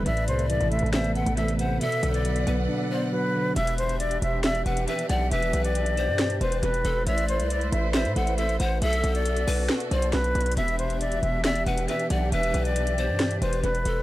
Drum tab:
HH |x-----x-----x-----x-----x-----x-----x---x---x---x-----x-----x-----x-----x-----x-----x-----------|x-----x-----x-----x-----x-----x-----x-----------------------------------------------------------|x-----x-----x-----x-----x-----x-----x-----------x-----x-----x-----x-----x-----x-----x-----------|x-----x-----x-----x-----x-----x-----x-----------x-----x-----x-----x-----x-----x-----x-----------|
SD |------------------------------------------------o-----------------------------------------------|------------------------------------------------------------------------------------------------|------------------------------------------------o-----------------------------------------------|------------------------------------------------o-----------------------------------------------|

HH |x-----x-----x-----x-----x-----x-----x-----------x-----x-----x-----x-----x-----x-----x-----------|x-----x-----x-----x-----x-----x-----o-----------------x-----x-----x-----x-----x-----x--x--x--x--|x-----x-----x-----x-----x-----x-----x-----------x-----x-----x-----x-----x-----x-----x-----------|x-----x-----x-----x-----x-----x-----x-----------x-----x-----x-----x-----x-----x-----x-----------|
SD |------------------------------------------------o-----------------------------------------------|------------------------------------------------o-----------------------o-----------------------|------------------------------------------------o-----------------------------------------------|------------------------------------------------o-----------------------------------------------|